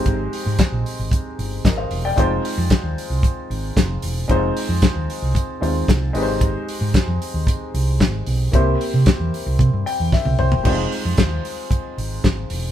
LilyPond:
<<
  \new Staff \with { instrumentName = "Grand piano" } { \time 4/4 \key f \minor \tempo 4 = 113 << { r2. <bes' ees''>16 <c'' f''>8 <d'' g''>16~ | <d'' g''>16 r2. r8. | r1 | r1 |
r2 r8 g''8 e''8 c''8 | r1 | } \\ { <aes c' ees' g' c''>2.~ <aes c' ees' g' c''>8 r8 | <aes c' ees' f' c''>1 | <aes c' ees' f' c''>2~ <aes c' ees' f' c''>8 <aes c' ees' f' c''>4 <aes c' ees' g' b' c''>8~ | <aes c' ees' g' b' c''>2.~ <aes c' ees' g' b' c''>8 r8 |
<bes c' e' g' c''>1 | <g aes c' ees' f' c''>1 | } >> }
  \new Staff \with { instrumentName = "Fingered electric bass" } { \clef bass \time 4/4 \key f \minor aes,,8 r16 aes,16 r16 bes,,16 r16 aes,,16 r8 g,,8 aes,,8 e,,8 | f,,8 r16 f,16 r16 ees,16 r16 c,16 r8 aes,,8 f,,8 e,,8 | f,,8 r16 f,16 r16 ees,16 r16 c,16 r8 ees,8 c,8 aes,,8~ | aes,,8 r16 aes,16 r16 f,16 r16 ees,16 r8 c,8 aes,,8 b,,8 |
c,8 r16 c16 r16 e,16 r16 c,16 c16 g,16 r16 e,16 r16 c,16 c,16 e,,16 | f,,8 r16 f,16 ees,8 r4 aes,,8 aes,,8 e,,8 | }
  \new DrumStaff \with { instrumentName = "Drums" } \drummode { \time 4/4 <hh bd>8 hho8 <hh bd sn>8 hho8 <hh bd>8 hho8 <hh bd sn>8 hho8 | <hh bd>8 hho8 <hh bd sn>8 hho8 <hh bd>8 hho8 <hh bd sn>8 hho8 | <hh bd>8 hho8 <hh bd sn>8 hho8 <hh bd>8 hho8 <hh bd sn>8 hho8 | <hh bd>8 hho8 <hh bd sn>8 hho8 <hh bd>8 hho8 <hh bd sn>8 hho8 |
<hh bd>8 hho8 <hh bd sn>8 hho8 <hh bd>8 hho8 <bd sn>16 tommh16 toml16 tomfh16 | <cymc bd>8 hho8 <hh bd sn>8 hho8 <hh bd>8 hho8 <hh bd sn>8 hho8 | }
>>